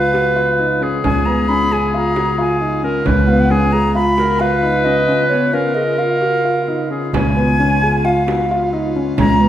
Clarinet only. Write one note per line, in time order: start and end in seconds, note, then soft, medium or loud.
0.00 0.84 B4 loud
0.83 2.83 G#4 loud
2.84 3.08 A#4 medium
3.06 3.52 B4 loud
3.51 3.91 G#4 medium
4.19 4.42 A#4 medium
4.41 5.55 B4 loud
5.54 6.90 A#4 loud
6.91 7.12 G#4 medium